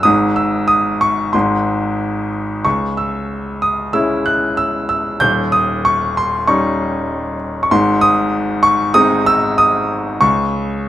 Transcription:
0.03 1.30 G#1 medium
0.03 1.30 G#2 medium
0.03 0.37 D#6 loud
0.36 0.66 E6 medium
0.68 1.02 D#6 medium
1.01 1.35 C#6 medium
1.33 2.62 G#1 medium
1.33 2.62 G#2 medium
1.33 2.28 C6 medium
2.65 5.17 C#2 medium
2.65 2.95 C#6 medium
2.97 3.64 E6 medium
3.62 3.95 D#6 medium
3.93 5.17 G#3 soft
3.93 5.18 C#4 soft
3.93 5.18 E4 medium
3.93 4.24 E6 medium
4.26 4.55 F#6 medium
4.57 4.87 E6 medium
4.89 5.22 E6 medium
5.20 7.66 D#1 medium
5.20 7.66 D#2 medium
5.20 5.54 G6 loud
5.52 5.85 D#6 medium
5.85 6.14 C#6 medium
6.17 6.49 C6 medium
6.47 7.67 G3 medium
6.47 7.67 C#4 soft
6.47 7.67 D#4 medium
6.47 7.36 C#6 medium
7.63 7.70 C#6 medium
7.71 10.17 G#1 medium
7.71 10.18 G#2 medium
7.71 7.99 C6 medium
8.01 8.65 D#6 loud
8.63 8.92 C#6 medium
8.94 10.17 G#3 medium
8.94 10.17 C4 medium
8.94 10.17 D#4 medium
8.94 9.24 D#6 loud
9.26 9.56 E6 loud
9.58 10.23 D#6 loud
10.21 10.89 C#2 medium
10.21 10.89 C#6 medium

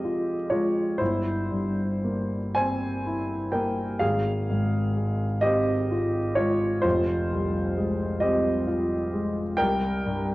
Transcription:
0.00 0.96 F2 soft
0.00 1.03 C3 soft
0.00 0.53 G#3 soft
0.00 0.33 C4 soft
0.00 0.47 G4 soft
0.00 1.03 G#4 soft
0.00 0.51 D#5 medium
0.00 1.03 F5 medium
0.05 0.49 F4 soft
0.50 1.00 G#3 soft
0.50 0.96 F4 soft
0.50 0.99 C#5 medium
0.98 3.98 G1 soft
0.98 2.53 E4 soft
0.98 2.55 C5 medium
1.51 2.37 G2 soft
2.04 2.87 A#3 soft
2.55 3.36 C4 soft
2.55 3.50 C5 medium
2.55 3.53 G#5 medium
3.07 3.83 E4 soft
3.52 4.02 A#3 soft
3.52 3.97 A#4 soft
3.52 4.00 G5 medium
3.99 6.80 G#1 soft
3.99 5.38 G#4 medium
3.99 5.42 F5 medium
4.49 5.24 G#2 soft
4.97 5.71 G#3 soft
5.41 6.18 C4 soft
5.41 6.33 G4 medium
5.41 6.36 D#5 medium
5.91 6.35 F4 soft
6.35 6.85 G#3 soft
6.35 6.81 F4 soft
6.35 6.83 C#5 medium
6.81 9.55 F1 soft
6.81 8.18 F4 soft
6.81 8.21 C5 medium
7.32 8.05 C2 soft
7.77 8.49 G#3 soft
8.20 8.94 C4 soft
8.20 8.63 G4 soft
8.20 8.66 D#5 medium
8.67 9.40 F4 soft
9.13 9.59 G#3 soft
9.57 10.35 C2 soft
9.57 10.35 A#4 medium
9.57 10.35 G5 medium
10.06 10.35 G2 soft

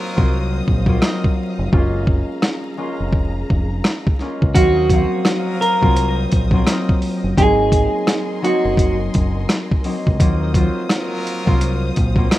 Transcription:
0.00 0.15 F#3 medium
0.00 0.63 F#3 loud
0.00 0.16 A#3 medium
0.00 0.16 C4 medium
0.00 0.17 F4 loud
0.00 0.63 F4 loud
0.00 0.63 A#4 loud
0.00 1.70 C5 medium
0.00 4.51 D#5 medium
0.00 4.51 F5 medium
0.00 1.70 D#6 medium
0.16 0.60 C2 medium
0.16 0.86 F#3 loud
0.16 0.81 A#3 medium
0.16 0.81 C4 medium
0.16 0.81 F4 loud
0.16 kick loud
0.68 0.98 A#1 loud
0.68 kick medium
0.86 1.78 F#3 medium
0.86 1.72 A#3 medium
0.86 1.78 C4 medium
0.86 1.73 F4 loud
0.86 kick medium
1.02 1.30 C4 medium
1.02 1.30 A#4 medium
1.02 1.30 D#5 loud
1.02 cross-stick medium
1.02 snare loud
1.24 kick medium
1.59 1.71 F1 loud
1.72 2.21 F#1 loud
1.72 2.76 G#3 medium
1.72 2.78 A#3 medium
1.72 2.77 C#4 medium
1.72 2.78 F4 loud
1.72 4.53 G#4 medium
1.72 4.53 A#5 medium
1.72 kick loud
2.07 kick loud
2.42 cross-stick medium
2.42 snare loud
2.77 4.19 G#3 medium
2.77 4.21 A#3 medium
2.77 4.20 C#4 medium
2.77 4.21 F4 loud
3.00 3.42 F1 medium
3.13 kick medium
3.50 3.80 F1 loud
3.50 kick medium
3.84 cross-stick loud
3.84 snare loud
4.07 kick medium
4.19 4.60 G#3 medium
4.19 4.53 A#3 medium
4.19 4.53 C#4 medium
4.19 4.53 F4 medium
4.19 snare soft
4.42 4.54 C#2 medium
4.42 kick medium
4.54 5.03 D#2 loud
4.54 4.91 F#3 medium
4.54 4.88 A#3 medium
4.54 4.88 C4 medium
4.54 5.57 F#4 loud
4.54 7.35 C5 medium
4.54 12.39 D#5 medium
4.54 7.35 F5 medium
4.54 4.88 F5 loud
4.54 7.35 D#6 medium
4.54 kick loud
4.54 closed hi-hat loud
4.75 4.87 C4 medium
4.75 4.87 A#4 medium
4.75 4.87 D#5 medium
4.90 5.19 F#3 medium
4.90 5.80 F#3 medium
4.90 5.81 A#3 medium
4.90 5.81 C4 medium
4.90 5.19 C5 medium
4.90 5.19 F5 medium
4.90 5.87 F5 loud
4.90 kick loud
4.90 closed hi-hat medium
5.24 6.27 F#3 loud
5.24 6.27 A#4 loud
5.24 6.27 F5 loud
5.24 cross-stick medium
5.24 snare loud
5.24 closed hi-hat medium
5.61 6.14 A#4 medium
5.61 closed hi-hat medium
5.81 6.25 C2 medium
5.81 6.51 F#3 loud
5.81 6.45 A#3 medium
5.81 6.46 C4 loud
5.81 6.46 F4 loud
5.81 kick loud
5.97 closed hi-hat medium
6.32 6.63 A#1 medium
6.32 kick medium
6.32 closed hi-hat medium
6.51 7.36 F#3 loud
6.51 7.37 A#3 medium
6.51 7.37 C4 medium
6.51 7.43 F4 loud
6.51 kick loud
6.67 6.95 C4 medium
6.67 6.95 A#4 medium
6.67 6.95 D#5 loud
6.67 cross-stick loud
6.67 snare loud
6.67 closed hi-hat medium
6.89 kick medium
7.02 open hi-hat soft
7.24 7.36 F#1 medium
7.36 7.86 G#1 loud
7.36 8.41 F#3 medium
7.36 8.42 A#3 medium
7.36 8.42 C4 medium
7.36 8.43 D#4 loud
7.36 8.40 G#4 medium
7.36 10.16 A#4 medium
7.36 10.16 G#5 medium
7.36 10.16 C6 medium
7.36 kick loud
7.36 closed hi-hat loud
7.72 kick loud
7.72 closed hi-hat medium
8.07 cross-stick loud
8.07 snare loud
8.07 closed hi-hat medium
8.42 9.83 F#3 loud
8.42 9.85 A#3 medium
8.42 9.84 C4 medium
8.42 9.85 D#4 loud
8.42 8.97 F#4 medium
8.42 closed hi-hat medium
8.65 9.07 F#1 medium
8.77 kick loud
8.77 closed hi-hat medium
9.14 9.45 F#1 loud
9.14 kick medium
9.14 closed hi-hat medium
9.49 cross-stick medium
9.49 snare loud
9.49 closed hi-hat medium
9.71 kick medium
9.84 10.18 F#3 medium
9.84 10.18 A#3 medium
9.84 10.18 C4 medium
9.84 10.18 D#4 medium
9.84 open hi-hat soft
10.07 10.19 C#2 medium
10.07 kick medium
10.19 10.68 D#2 loud
10.19 10.53 F#3 medium
10.19 10.53 A#3 medium
10.19 10.53 C4 medium
10.19 10.53 F4 loud
10.19 12.39 C5 medium
10.19 12.39 F5 medium
10.19 12.39 D#6 medium
10.19 kick loud
10.19 closed hi-hat loud
10.40 10.52 C4 medium
10.40 10.52 A#4 medium
10.40 10.52 D#5 medium
10.54 11.44 F#3 medium
10.54 10.84 F#3 medium
10.54 11.46 A#3 medium
10.54 11.45 C4 medium
10.54 11.46 F4 loud
10.54 10.84 F4 medium
10.54 10.84 C5 loud
10.54 kick loud
10.54 closed hi-hat medium
10.89 11.92 F#3 loud
10.89 11.92 F4 loud
10.89 11.92 A#4 loud
10.89 cross-stick loud
10.89 snare loud
10.89 closed hi-hat medium
11.27 closed hi-hat medium
11.45 11.90 C2 medium
11.45 12.16 F#3 medium
11.45 12.10 A#3 medium
11.45 12.10 C4 medium
11.45 12.10 F4 loud
11.45 kick loud
11.61 closed hi-hat medium
11.96 12.27 A#1 loud
11.96 kick medium
11.96 closed hi-hat medium
12.16 12.39 F#3 medium
12.16 12.39 A#3 medium
12.16 12.39 C4 medium
12.16 12.39 F4 loud
12.16 kick loud
12.31 12.39 C4 medium
12.31 12.39 A#4 loud
12.31 12.39 D#5 loud
12.31 cross-stick loud
12.31 snare loud
12.31 closed hi-hat medium

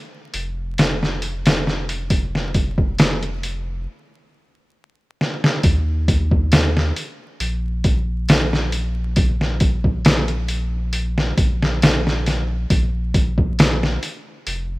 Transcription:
0.34 3.87 F1 medium
0.34 open hi-hat medium
0.78 snare loud
0.78 open hi-hat medium
1.03 snare soft
1.22 open hi-hat medium
1.46 snare loud
1.46 open hi-hat medium
1.67 snare soft
1.89 open hi-hat medium
2.10 kick loud
2.10 open hi-hat medium
2.35 snare soft
2.54 kick medium
2.54 open hi-hat medium
2.78 kick medium
2.99 snare loud
2.99 open hi-hat medium
3.23 closed hi-hat soft
3.43 open hi-hat medium
5.21 snare medium
5.44 snare medium
5.63 6.92 D#2 loud
5.63 kick loud
5.63 open hi-hat medium
6.08 kick loud
6.08 open hi-hat medium
6.31 kick loud
6.52 snare loud
6.52 open hi-hat medium
6.77 snare soft
6.96 open hi-hat medium
7.40 11.33 A#1 medium
7.40 open hi-hat medium
7.84 kick loud
7.84 open hi-hat medium
8.29 snare loud
8.29 open hi-hat medium
8.53 snare soft
8.72 open hi-hat medium
9.16 kick loud
9.16 open hi-hat medium
9.41 snare soft
9.60 kick loud
9.60 open hi-hat medium
9.84 kick medium
10.05 snare loud
10.05 open hi-hat medium
10.28 closed hi-hat soft
10.49 open hi-hat medium
10.93 open hi-hat medium
11.18 snare medium
11.38 12.66 A#1 medium
11.38 kick medium
11.38 open hi-hat medium
11.62 snare medium
11.82 snare loud
11.82 open hi-hat medium
12.07 snare soft
12.26 snare medium
12.26 open hi-hat medium
12.70 13.98 A#1 medium
12.70 kick loud
12.70 open hi-hat medium
13.14 kick medium
13.14 open hi-hat medium
13.38 kick loud
13.59 snare loud
13.59 open hi-hat medium
13.83 snare soft
14.03 open hi-hat medium
14.47 14.79 F1 medium
14.47 open hi-hat medium

